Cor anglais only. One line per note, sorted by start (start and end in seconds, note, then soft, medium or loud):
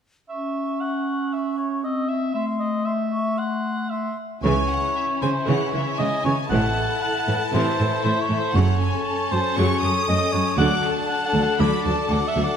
0.29 0.82 E5 soft
0.81 1.35 F#5 soft
1.33 1.57 E5 soft
1.57 1.83 C#5 soft
1.84 2.10 D#5 soft
2.08 2.34 E5 soft
2.34 2.46 E5 soft
2.59 2.87 D#5 soft
2.85 3.40 E5 soft
3.39 3.91 F#5 soft
3.90 4.17 E5 soft
4.44 5.18 C#5 medium
5.22 5.50 C5 medium
5.48 6.00 C#5 medium
5.99 6.25 D#5 medium
6.25 6.37 C#5 medium
6.50 7.00 F#5 medium
7.02 7.18 F#5 medium
7.19 7.36 F#5 medium
7.36 7.44 F#5 soft
7.54 8.03 C5 medium
8.04 8.21 C5 medium
8.21 8.40 C#5 medium
8.38 8.57 C5 medium
8.55 9.33 C#5 medium
9.32 9.56 C5 medium
9.57 10.07 C#5 medium
10.08 10.34 D#5 medium
10.33 10.57 C#5 medium
10.58 10.91 F#5 medium
11.09 11.25 F#5 medium
11.26 11.42 F#5 medium
11.43 11.61 F#5 medium
11.60 12.10 D5 medium
12.10 12.29 D5 medium
12.27 12.43 E5 medium
12.44 12.57 D5 medium